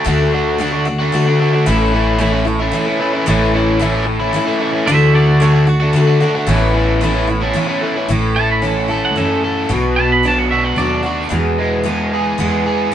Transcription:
0.05 D2 D3 A3 D4 F#4
0.32 D3 A3 D4 F#4
0.58 D3 A3 D4 F#4
0.72 A3 D4 F#4
0.85 A3 D4 F#4, muted overdriven electric guitar stroke
0.99 A3 D4 F#4
1.12 D3 A3 D4 F#4
1.26 A3 D4 F#4
1.39 D3 A3 D4 F#4
1.53 A3 D4 F#4
1.66 A1 A2 E3 A3 C#4 E4
1.93 E3 A3 C#4 E4
2.18 A2 E3 A3 C#4 E4
2.33 A3 C#4 E4
2.45 A3 C#4 E4, muted overdriven electric guitar stroke
2.60 A3 C#4 E4
2.72 E3 A3 C#4 E4
2.87 A3 C#4 E4
3.00 E3 A3 C#4 E4
3.14 A3 C#4 E4
3.26 A1 A2 E3 A3 C#4 E4
3.53 E3 A3 C#4 E4
3.79 A2 E3 A3 C#4 E4
3.93 A3 C#4 E4
4.06 muted overdriven electric guitar stroke
4.20 A3 C#4 E4
4.33 E3 A3 C#4 E4
4.45 A3 C#4 E4
4.59 E3 A3 C#4 E4
4.72 A3 C#4 E4
4.86 D2 D3 A3 D4 F#4 C5 E5
5.13 D3 A3 D4 F#4 A4 D5
5.40 D3 A3 D4 F#4 A4 C#5
5.53 A3 D4 F#4
5.67 A3 D4 F#4, muted overdriven electric guitar stroke
5.80 A3 D4 F#4
5.93 D3 A3 D4 F#4
6.07 A3 D4 F#4
6.20 D3 A3 D4 F#4
6.35 A3 D4 F#4
6.47 A1 A2 E3 A3 B3 C#4 E4
6.74 E3 A3 C#4 E4
7.01 A2 E3 A3 B3 C#4 E4
7.14 A3 C#4 E4
7.27 B3 C#4 E4, muted overdriven electric guitar stroke
7.41 A3 C#4 E4
7.53 E3 B3 C#4 E4
7.67 A3 C#4 E4
7.81 E3 A3 C#4 E4
7.96 A3 C#4 E4
8.08 A1 A2 E3 A3 C#4 E4
8.36 A3 A5
8.51 B5
8.62 E3 A3 C#4 E4
8.66 A5
8.78 F#5
8.88 A3 C#4 E4 A4
8.92 E5
9.05 F#5
9.15 F#2 E3 A3 C#4 E4 E5
9.45 A4
9.69 B1 B2 F#3 B3 D4 F#4
9.96 B3 A5
10.12 B5
10.23 F#3 B3 D4 F#4
10.28 A5
10.39 F#5
10.51 F#4 E5
10.64 F#5
10.76 D#2 F#3 B3 D4 F#4 D5
11.03 B3 D4 F#4
11.29 E2 B2 E3 G#3 B3 G#4
11.58 G#3
11.84 E3 G#3 B3 G#4
12.13 G#4
12.38 E2 E3 G#3 B3 G#4
12.67 G#4

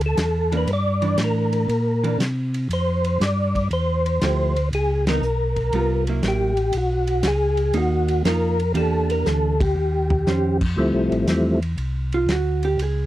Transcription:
Already playing: D2
0.01 ride
0.06 A4
0.17 E2, snare, hi-hat pedal, ride
0.52 E3 A#3 D4, ride
0.57 B4
0.67 G2, ride
0.73 D5
1.02 E3 D4, ride
1.18 A2, snare, hi-hat pedal, ride
1.24 A#4
1.53 ride
1.69 A#2, ride
2.04 E3 A#3 D4, ride
2.18 C3, snare, hi-hat pedal, ride
2.54 ride
2.69 F2, ride
2.73 C5
3.04 ride
3.20 G2 D5, snare, hi-hat pedal, ride
3.55 kick, ride
3.71 E2 C5, ride
4.06 ride
4.21 D2 F3 A3 E4 G4, snare, hi-hat pedal, ride
4.56 ride
4.72 C#2 G#4, ride
5.07 E3 B3 D#4 A#4, snare, ride
5.21 B1, hi-hat pedal
5.56 kick, ride
5.72 C2 G3 B3 F4, ride
6.07 F#3 A#3 E4, ride
6.22 A1, snare, hi-hat pedal, ride
6.28 G4
6.57 ride
6.72 B1, ride
6.77 F#4
7.07 ride
7.23 C#2, snare, hi-hat pedal, ride
7.27 G#4
7.57 ride
7.73 D#2 A#3 D#4 F#4, ride
8.08 ride
8.25 F2 A#3 D#4 F4 A#4, snare, hi-hat pedal, ride
8.60 ride
8.74 E2 E3 A#3 D4 G4 A4, ride
9.10 A#4, ride
9.26 D2 A4, snare, hi-hat pedal
9.60 G4, kick, ride
9.76 D#2
10.10 floor tom
10.27 F2 D#3 C#4 G4 C5, snare, hi-hat pedal
10.61 kick, crash
10.77 D2 F3 G3 A3 C4 E4
10.92 C2
11.10 A1, ride
11.26 E2 F3 G3 A3 C4 E4, snare, hi-hat pedal, ride
11.62 ride
11.77 C2, ride
12.12 F4, ride
12.27 D2, snare, hi-hat pedal, ride
12.32 F#4
12.63 G4, ride
12.78 C#2, ride
12.82 G#4

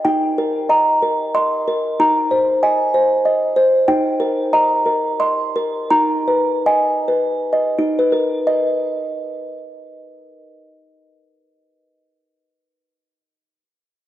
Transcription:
0.05 D#4 G5
0.38 A#4
0.69 D#5 A#5
1.02 A#4
1.35 D#5 C6
1.68 A#4
2.00 D#4 A#5
2.31 C5
2.63 D#5 G#5
2.94 C5
3.25 D#5
3.56 C5
3.88 D#4 G5
4.20 A#4
4.53 D#5 A#5
4.86 A#4
5.20 D#5 C6
5.56 A#4
5.91 D#4 A#5
6.28 B4
6.66 D#5 G#5
7.08 B4
7.53 D#5
7.79 D#4
7.99 B4
8.12 A#4
8.47 D#5

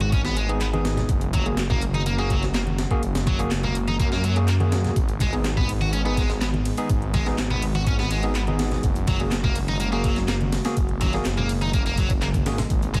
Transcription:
Already playing: G#1 D#3 G#3 B3 G#4
0.00 F#4, closed hi-hat
0.12 C#4, kick, closed hi-hat
0.25 B3, snare, closed hi-hat
0.37 G#3, closed hi-hat
0.49 B3 D#4 G#4, closed hi-hat
0.61 B3, clap, closed hi-hat
0.73 B3 D#4 G#4, closed hi-hat, high conga
0.85 snare, closed hi-hat
0.97 snare, closed hi-hat, low conga
1.09 F#1 C#3 G#3 A#3 F#4, kick, closed hi-hat
1.21 closed hi-hat
1.33 F#3, kick, closed hi-hat, high conga, low conga
1.46 A#3 F#4 G#4, closed hi-hat
1.57 snare, clap, closed hi-hat
1.70 A#3, kick, closed hi-hat, low conga
1.82 closed hi-hat
1.93 D#4, closed hi-hat, high conga
2.06 A#3, closed hi-hat
2.18 A#3 F#4 G#4, closed hi-hat
2.30 F#3, kick, closed hi-hat
2.43 snare, closed hi-hat
2.54 A#3, snare, clap, closed hi-hat
2.67 closed hi-hat, high conga
2.79 snare, closed hi-hat
2.91 A#3 F#4 G#4, kick, closed hi-hat
3.03 F#1, closed hi-hat
3.15 snare, closed hi-hat
3.26 F#3, kick, closed hi-hat, high conga, low conga
3.39 A#3 F#4 G#4, closed hi-hat
3.51 F#1, snare, clap, closed hi-hat
3.63 A#3, closed hi-hat, low conga
3.75 closed hi-hat
3.88 D#4, closed hi-hat, high conga
3.99 F#2 A#3, kick, closed hi-hat
4.12 A#3, snare, closed hi-hat
4.24 F#3, closed hi-hat
4.36 A#3 F#4 G#4, closed hi-hat
4.48 A#3, clap, closed hi-hat
4.60 A#3 F#4 G#4, closed hi-hat, high conga
4.72 snare, closed hi-hat
4.84 snare, closed hi-hat, low conga
4.96 G#1 D#3 B3 G#4, kick, closed hi-hat
5.09 closed hi-hat
5.20 G#3, kick, closed hi-hat, ride, high conga, low conga
5.33 B3 D#4 G#4, closed hi-hat
5.44 snare, clap, closed hi-hat
5.57 B3, kick, closed hi-hat, low conga
5.69 closed hi-hat, ride
5.81 F#4, closed hi-hat, high conga
5.93 C#4, closed hi-hat
6.05 B3 D#4 G#4, closed hi-hat
6.17 G#3, kick, closed hi-hat, ride
6.30 snare, closed hi-hat
6.42 B3, snare, clap, closed hi-hat
6.54 closed hi-hat, high conga
6.65 closed hi-hat, ride
6.77 B3 D#4 G#4, closed hi-hat
6.89 G#1 F#4, kick, closed hi-hat
7.02 closed hi-hat
7.13 G#3, kick, closed hi-hat, ride, high conga, low conga
7.26 B3 D#4 G#4, snare, closed hi-hat
7.38 G#1, snare, clap, closed hi-hat
7.50 B3, closed hi-hat, low conga
7.62 closed hi-hat, ride
7.74 F#4, closed hi-hat, high conga
7.87 C#4, kick, closed hi-hat
7.99 B3, snare, closed hi-hat
8.11 G#3, closed hi-hat, ride
8.23 B3 D#4 G#4, closed hi-hat
8.35 B3, clap, closed hi-hat
8.47 B3 D#4 G#4, closed hi-hat, high conga
8.59 snare, closed hi-hat, ride
8.71 snare, closed hi-hat, low conga
8.83 F#1 C#3 A#3, kick, closed hi-hat
8.95 closed hi-hat
9.07 F#3, kick, closed hi-hat, ride, high conga, low conga
9.20 A#3 F#4 G#4, closed hi-hat
9.31 snare, clap, closed hi-hat
9.44 A#3, kick, closed hi-hat, low conga
9.56 closed hi-hat, ride
9.68 D#4, closed hi-hat, high conga
9.80 A#3, closed hi-hat
9.92 A#3 F#4 G#4, closed hi-hat
10.04 F#3, kick, closed hi-hat, ride
10.16 snare, closed hi-hat
10.28 A#3, snare, clap, closed hi-hat
10.41 closed hi-hat, high conga
10.52 snare, closed hi-hat, ride
10.65 A#3 F#4 G#4, snare, closed hi-hat
10.77 F#1 G#4, kick, closed hi-hat
10.89 closed hi-hat
11.01 F#3, kick, closed hi-hat, ride, high conga, low conga
11.13 A#3 F#4 G#4, snare, closed hi-hat
11.25 F#1, snare, clap, closed hi-hat
11.37 A#3, closed hi-hat, low conga
11.49 closed hi-hat, ride
11.61 D#4, closed hi-hat, high conga
11.73 A#3, kick, closed hi-hat
11.86 A#3, closed hi-hat, ride
11.98 F#3, kick, closed hi-hat, ride
12.10 kick, closed hi-hat
12.22 A#3, clap, closed hi-hat
12.34 kick, closed hi-hat, high conga
12.46 G#1 A#3 F#4 G#4, snare, closed hi-hat, ride
12.58 snare, closed hi-hat, low conga
12.70 G#1 D#3 G#3 B3, kick, closed hi-hat
12.82 closed hi-hat
12.94 G#3, kick, closed hi-hat, ride, high conga, low conga

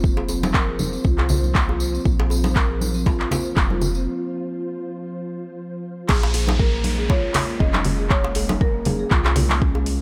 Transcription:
Already playing: F1 F3 F4 C5
0.04 kick, tambourine
0.17 djembe slap, djembe tone
0.28 C4, tambourine, djembe tone
0.43 tambourine, djembe slap, high conga
0.54 A#4, kick, clap, tambourine
0.68 G#4
0.79 tambourine, high conga, low conga
0.93 C4, tambourine
1.04 C2 F4, kick, tambourine
1.18 clap, djembe tone
1.29 A#3, tambourine, djembe tone, low conga
1.43 tambourine, high conga
1.55 A#3, kick, clap, tambourine
1.69 F4, djembe tone
1.80 tambourine
1.94 C4, tambourine
2.05 A#1 A#3, kick, tambourine
2.20 djembe slap
2.30 C4, tambourine, djembe tone
2.44 tambourine, djembe slap, high conga
2.55 A#4, kick, clap, tambourine
2.69 G#4
2.81 tambourine, high conga
2.94 C4, tambourine
3.06 F4, kick, tambourine, djembe slap
3.20 clap
3.31 A#3, tambourine, djembe slap, low conga
3.45 tambourine
3.56 F1 A#3, kick, clap, tambourine, djembe tone
3.70 F4, high conga
3.81 tambourine, low conga
3.95 C4, tambourine
6.08 A#1 G#3 A#3 C#4 G#4, kick, clap, crash, downlifter
6.23 djembe slap
6.34 A#3, open hi-hat, djembe tone
6.47 djembe slap, high conga
6.59 A#3 A#4, kick
6.73 A#3
6.84 open hi-hat, high conga
6.98 G#4
7.10 F4 C#5, kick, djembe slap
7.34 A#3, clap, open hi-hat, djembe slap, low conga
7.60 F1 C#4 D#5, kick, djembe tone
7.73 G#3, clap, high conga
7.85 open hi-hat, low conga
7.99 G#4
8.10 A#3 C#5, kick, clap
8.24 djembe slap, djembe tone
8.35 A#3, open hi-hat, djembe tone
8.49 djembe slap, high conga
8.61 A#3 A#4, kick
8.74 A#3
8.85 G#4, open hi-hat, high conga, low conga
8.99 G#4
9.11 C2 F4, kick, clap
9.24 clap, djembe tone
9.36 A#3, open hi-hat, low conga
9.49 clap, high conga
9.62 C#4, kick
9.75 G#3, djembe tone
9.86 open hi-hat

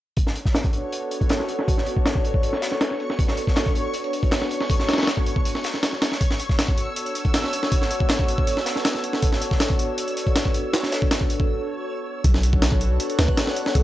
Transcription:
0.17 B3 D4 F#4 A4 C#5 C#6, kick, closed hi-hat
0.27 snare
0.35 closed hi-hat
0.45 kick, snare
0.55 snare, closed hi-hat
0.64 kick, closed hi-hat
0.73 closed hi-hat
0.92 closed hi-hat
1.02 closed hi-hat
1.11 B3 D4 F#4 A4 C#5, closed hi-hat
1.21 kick, closed hi-hat
1.29 snare, closed hi-hat
1.40 snare
1.48 closed hi-hat
1.59 snare
1.68 B3 D4 F#4 A4 C#5, kick, closed hi-hat
1.78 snare
1.86 closed hi-hat
1.97 kick
2.06 snare, closed hi-hat
2.15 kick
2.24 closed hi-hat
2.34 kick
2.43 closed hi-hat
2.53 snare
2.62 B3 D4 F#4 A4 C#5, snare, closed hi-hat
2.72 snare
2.81 snare, closed hi-hat
2.91 snare
3.00 closed hi-hat
3.10 snare
3.19 B3 D4 F#4 A4 C#5, kick, closed hi-hat
3.28 snare
3.37 closed hi-hat
3.47 kick, snare
3.56 snare, closed hi-hat
3.66 kick, closed hi-hat
3.75 closed hi-hat
3.94 closed hi-hat
4.04 closed hi-hat
4.13 B3 D4 F#4 A4 C#5, closed hi-hat
4.23 kick, closed hi-hat
4.31 snare, closed hi-hat
4.42 snare
4.51 closed hi-hat
4.61 snare
4.70 B3 D4 F#4 A4 C#5, kick, closed hi-hat
4.79 snare
4.89 snare, closed hi-hat
4.93 snare, closed hi-hat
4.98 snare, closed hi-hat
5.03 snare, closed hi-hat
5.07 snare, closed hi-hat
5.17 kick
5.26 closed hi-hat
5.36 kick
5.45 closed hi-hat
5.55 snare
5.64 snare, closed hi-hat
5.74 snare
5.83 snare, closed hi-hat
5.93 snare
6.02 snare, closed hi-hat
6.12 snare
6.21 B3 D4 F#4 A4 C#5 E6, kick, closed hi-hat
6.31 snare
6.40 closed hi-hat
6.49 kick, snare
6.59 snare, closed hi-hat
6.68 kick, closed hi-hat
6.77 closed hi-hat
6.96 closed hi-hat
7.06 closed hi-hat
7.15 B3 D4 F#4 A4 C#5, closed hi-hat
7.25 kick, closed hi-hat
7.34 snare, closed hi-hat
7.44 snare
7.53 closed hi-hat
7.63 snare
7.72 B3 D4 F#4 A4 C#5, kick, closed hi-hat
7.82 snare
7.91 closed hi-hat
8.00 kick
8.09 snare, closed hi-hat
8.19 kick
8.28 closed hi-hat
8.38 kick
8.47 closed hi-hat
8.57 snare
8.66 B3 D4 F#4 A4 C#5, snare, closed hi-hat
8.76 snare
8.85 snare, closed hi-hat
8.95 snare
9.04 closed hi-hat
9.13 snare
9.22 B3 D4 F#4 A4 C#5, kick, closed hi-hat
9.32 snare
9.42 closed hi-hat
9.51 kick, snare
9.60 snare, closed hi-hat
9.70 kick, closed hi-hat
9.79 closed hi-hat
9.98 closed hi-hat
10.08 closed hi-hat
10.17 B3 D4 F#4 A4 C#5, closed hi-hat
10.27 kick, closed hi-hat
10.36 snare, closed hi-hat
10.45 kick
10.54 closed hi-hat
10.73 B3 D4 F#4 A4 C#5, snare, closed hi-hat
10.83 snare
10.92 snare, closed hi-hat
11.02 kick
11.11 snare, closed hi-hat
11.21 kick
11.30 closed hi-hat
11.40 kick
12.24 B1 B3 D4 F#4 A4 C#5 F#5 F#6, kick, closed hi-hat
12.34 snare
12.43 closed hi-hat
12.53 kick
12.62 snare, closed hi-hat
12.72 kick
12.81 closed hi-hat
13.00 closed hi-hat
13.10 closed hi-hat
13.19 D2 B3 D4 F#4 A4 B4 C#5, snare, closed hi-hat
13.28 kick
13.37 snare, closed hi-hat
13.47 snare
13.56 closed hi-hat
13.66 snare
13.75 B1 B3 D4 F#4 A4 C#5, kick, closed hi-hat

